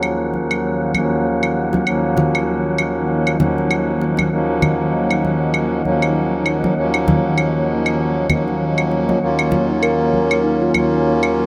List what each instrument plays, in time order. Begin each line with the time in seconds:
Already playing: harmonium D#2 F3 F#3 A#3 C#4, ambient pad D#3 A#3 D#4 C#5 D#5, synth texture F#3 F#5
0.03 claves
0.34 high conga
0.51 claves
0.93 harmonium D#2 F#3 A#3 C#4, high conga, claves
0.97 harmonium F3
1.43 claves
1.73 high bongo, high conga
1.84 harmonium D#2 F3 F#3 A#3 C#4, claves
2.17 high bongo, high conga, low conga
2.35 claves
2.78 claves
3.27 claves
3.38 harmonium D#2 F3 F#3 A#3 C#4, high bongo, high conga, low conga
3.58 high bongo
3.71 claves
4.01 high bongo
4.17 high bongo, high conga, claves
4.29 harmonium D#2 F#3 A#3 C#4
4.33 harmonium F3
4.62 high bongo, high conga, low conga, claves
5.11 claves
5.25 high conga
5.54 claves
5.83 harmonium D#2 F3 F#3 A#3 C#4, high conga
6.02 claves
6.46 claves
6.64 high bongo, high conga
6.75 harmonium D#2 F#3 A#3 C#4
6.79 harmonium F3
6.94 claves
7.08 high bongo, high conga, low conga
7.38 claves
7.86 claves
8.28 harmonium D#2 F#3 A#3 C#4, high bongo, high conga, low conga, claves
8.32 harmonium F3
8.48 high bongo
8.78 claves
8.91 high bongo
9.09 high bongo, high conga
9.20 harmonium D#2 F#3 A#3 C#4, synth texture A#4, ambient pad G#5
9.24 harmonium F4
9.39 claves
9.51 high bongo, high conga, low conga
9.70 steel tongue drum D#4
9.83 steel tongue drum A#4, claves
10.13 high conga
10.31 claves
10.44 steel tongue drum D#4
10.62 steel tongue drum F4
10.72 harmonium D#2 F#3 A#3 C#4, steel tongue drum D#4, high conga, claves
10.76 harmonium F4
10.92 steel tongue drum D#4
11.23 claves